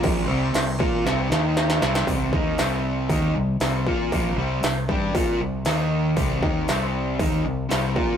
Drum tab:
CC |x---x-----------|----------------|----------------|----------------|
HH |----------------|o---o---o---o---|o---o---o---o---|o---o---o---o---|
SD |----o---o-o-oooo|----o-------o---|----o-------o---|----o-------o---|
BD |o-----o---------|o-o-----o-----o-|o-----o-o-------|o-o-----o-----o-|